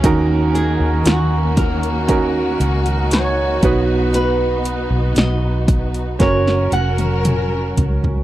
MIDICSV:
0, 0, Header, 1, 6, 480
1, 0, Start_track
1, 0, Key_signature, -6, "minor"
1, 0, Tempo, 1025641
1, 19, Time_signature, 4, 2, 24, 8
1, 2419, Tempo, 1041667
1, 3832, End_track
2, 0, Start_track
2, 0, Title_t, "Nylon-string guitar"
2, 0, Program_c, 0, 24
2, 256, Note_on_c, 0, 68, 85
2, 494, Note_off_c, 0, 68, 0
2, 496, Note_on_c, 0, 66, 75
2, 720, Note_off_c, 0, 66, 0
2, 741, Note_on_c, 0, 70, 75
2, 1460, Note_off_c, 0, 70, 0
2, 1462, Note_on_c, 0, 73, 85
2, 1939, Note_off_c, 0, 73, 0
2, 1941, Note_on_c, 0, 71, 91
2, 2400, Note_off_c, 0, 71, 0
2, 2423, Note_on_c, 0, 75, 82
2, 2898, Note_off_c, 0, 75, 0
2, 2900, Note_on_c, 0, 73, 92
2, 3136, Note_off_c, 0, 73, 0
2, 3138, Note_on_c, 0, 78, 87
2, 3601, Note_off_c, 0, 78, 0
2, 3832, End_track
3, 0, Start_track
3, 0, Title_t, "Grand piano"
3, 0, Program_c, 1, 0
3, 0, Control_c, 1, 64, 127
3, 15, Note_on_c, 1, 61, 76
3, 19, Note_on_c, 1, 51, 77
3, 19, Note_on_c, 1, 63, 75
3, 22, Note_on_c, 1, 66, 79
3, 24, Control_c, 1, 64, 0
3, 25, Note_on_c, 1, 70, 92
3, 103, Control_c, 1, 64, 127
3, 719, Note_off_c, 1, 51, 0
3, 928, Note_off_c, 1, 61, 0
3, 929, Note_off_c, 1, 63, 0
3, 931, Note_off_c, 1, 66, 0
3, 932, Note_off_c, 1, 70, 0
3, 972, Note_on_c, 1, 61, 67
3, 976, Note_on_c, 1, 63, 56
3, 981, Note_on_c, 1, 66, 61
3, 982, Note_on_c, 1, 70, 79
3, 1694, Note_off_c, 1, 63, 0
3, 1696, Note_off_c, 1, 61, 0
3, 1697, Note_off_c, 1, 66, 0
3, 1698, Note_on_c, 1, 59, 68
3, 1701, Note_off_c, 1, 70, 0
3, 1701, Note_on_c, 1, 63, 65
3, 1703, Control_c, 1, 64, 0
3, 1703, Note_on_c, 1, 47, 60
3, 1704, Note_on_c, 1, 66, 71
3, 1706, Note_on_c, 1, 71, 79
3, 1781, Control_c, 1, 64, 127
3, 2401, Note_off_c, 1, 47, 0
3, 2606, Note_off_c, 1, 59, 0
3, 2608, Note_off_c, 1, 63, 0
3, 2610, Note_off_c, 1, 66, 0
3, 2611, Note_off_c, 1, 71, 0
3, 2890, Note_on_c, 1, 61, 66
3, 2896, Note_on_c, 1, 66, 56
3, 2898, Note_on_c, 1, 70, 73
3, 2899, Control_c, 1, 64, 0
3, 2985, Control_c, 1, 64, 127
3, 3808, Note_off_c, 1, 61, 0
3, 3811, Note_off_c, 1, 66, 0
3, 3812, Note_off_c, 1, 70, 0
3, 3832, End_track
4, 0, Start_track
4, 0, Title_t, "String section"
4, 0, Program_c, 2, 48
4, 0, Note_on_c, 2, 61, 73
4, 17, Note_on_c, 2, 58, 76
4, 17, Note_on_c, 2, 66, 91
4, 19, Note_on_c, 2, 51, 79
4, 959, Note_off_c, 2, 61, 0
4, 978, Note_on_c, 2, 63, 67
4, 1681, Note_off_c, 2, 58, 0
4, 1682, Note_off_c, 2, 51, 0
4, 1700, Note_on_c, 2, 59, 70
4, 2874, Note_off_c, 2, 66, 0
4, 2875, Note_off_c, 2, 63, 0
4, 2882, Note_off_c, 2, 59, 0
4, 2889, Note_on_c, 2, 70, 80
4, 2890, Note_on_c, 2, 61, 59
4, 2891, Note_on_c, 2, 54, 69
4, 2892, Note_on_c, 2, 66, 65
4, 3832, Note_off_c, 2, 54, 0
4, 3832, Note_off_c, 2, 61, 0
4, 3832, Note_off_c, 2, 66, 0
4, 3832, Note_off_c, 2, 70, 0
4, 3832, End_track
5, 0, Start_track
5, 0, Title_t, "Fingered electric bass"
5, 0, Program_c, 3, 33
5, 18, Note_on_c, 3, 39, 101
5, 358, Note_off_c, 3, 39, 0
5, 376, Note_on_c, 3, 39, 93
5, 488, Note_off_c, 3, 39, 0
5, 496, Note_on_c, 3, 39, 100
5, 1198, Note_off_c, 3, 39, 0
5, 1217, Note_on_c, 3, 37, 95
5, 1679, Note_off_c, 3, 37, 0
5, 1697, Note_on_c, 3, 35, 92
5, 2278, Note_off_c, 3, 35, 0
5, 2296, Note_on_c, 3, 35, 90
5, 2408, Note_off_c, 3, 35, 0
5, 2418, Note_on_c, 3, 35, 88
5, 2875, Note_off_c, 3, 35, 0
5, 2893, Note_on_c, 3, 30, 94
5, 3117, Note_off_c, 3, 30, 0
5, 3134, Note_on_c, 3, 29, 78
5, 3599, Note_off_c, 3, 29, 0
5, 3618, Note_on_c, 3, 37, 78
5, 3832, Note_off_c, 3, 37, 0
5, 3832, End_track
6, 0, Start_track
6, 0, Title_t, "Drums"
6, 18, Note_on_c, 9, 36, 97
6, 18, Note_on_c, 9, 42, 86
6, 64, Note_off_c, 9, 42, 0
6, 65, Note_off_c, 9, 36, 0
6, 259, Note_on_c, 9, 42, 68
6, 306, Note_off_c, 9, 42, 0
6, 494, Note_on_c, 9, 42, 94
6, 502, Note_on_c, 9, 38, 117
6, 541, Note_off_c, 9, 42, 0
6, 549, Note_off_c, 9, 38, 0
6, 735, Note_on_c, 9, 42, 73
6, 736, Note_on_c, 9, 36, 91
6, 782, Note_off_c, 9, 42, 0
6, 783, Note_off_c, 9, 36, 0
6, 858, Note_on_c, 9, 42, 55
6, 904, Note_off_c, 9, 42, 0
6, 976, Note_on_c, 9, 42, 81
6, 978, Note_on_c, 9, 36, 75
6, 1023, Note_off_c, 9, 42, 0
6, 1024, Note_off_c, 9, 36, 0
6, 1220, Note_on_c, 9, 42, 63
6, 1266, Note_off_c, 9, 42, 0
6, 1337, Note_on_c, 9, 42, 45
6, 1384, Note_off_c, 9, 42, 0
6, 1457, Note_on_c, 9, 42, 87
6, 1466, Note_on_c, 9, 38, 88
6, 1504, Note_off_c, 9, 42, 0
6, 1513, Note_off_c, 9, 38, 0
6, 1697, Note_on_c, 9, 42, 65
6, 1698, Note_on_c, 9, 36, 98
6, 1744, Note_off_c, 9, 42, 0
6, 1745, Note_off_c, 9, 36, 0
6, 1938, Note_on_c, 9, 42, 92
6, 1985, Note_off_c, 9, 42, 0
6, 2178, Note_on_c, 9, 42, 62
6, 2225, Note_off_c, 9, 42, 0
6, 2416, Note_on_c, 9, 42, 85
6, 2423, Note_on_c, 9, 38, 120
6, 2462, Note_off_c, 9, 42, 0
6, 2469, Note_off_c, 9, 38, 0
6, 2655, Note_on_c, 9, 36, 104
6, 2655, Note_on_c, 9, 42, 73
6, 2701, Note_off_c, 9, 36, 0
6, 2701, Note_off_c, 9, 42, 0
6, 2776, Note_on_c, 9, 42, 50
6, 2822, Note_off_c, 9, 42, 0
6, 2893, Note_on_c, 9, 42, 76
6, 2895, Note_on_c, 9, 36, 81
6, 2900, Note_on_c, 9, 38, 53
6, 2939, Note_off_c, 9, 42, 0
6, 2941, Note_off_c, 9, 36, 0
6, 2946, Note_off_c, 9, 38, 0
6, 3021, Note_on_c, 9, 38, 50
6, 3067, Note_off_c, 9, 38, 0
6, 3134, Note_on_c, 9, 42, 60
6, 3180, Note_off_c, 9, 42, 0
6, 3255, Note_on_c, 9, 42, 43
6, 3257, Note_on_c, 9, 48, 60
6, 3301, Note_off_c, 9, 42, 0
6, 3303, Note_off_c, 9, 48, 0
6, 3377, Note_on_c, 9, 42, 75
6, 3379, Note_on_c, 9, 47, 85
6, 3423, Note_off_c, 9, 42, 0
6, 3425, Note_off_c, 9, 47, 0
6, 3620, Note_on_c, 9, 42, 65
6, 3622, Note_on_c, 9, 43, 97
6, 3666, Note_off_c, 9, 42, 0
6, 3668, Note_off_c, 9, 43, 0
6, 3742, Note_on_c, 9, 43, 86
6, 3788, Note_off_c, 9, 43, 0
6, 3832, End_track
0, 0, End_of_file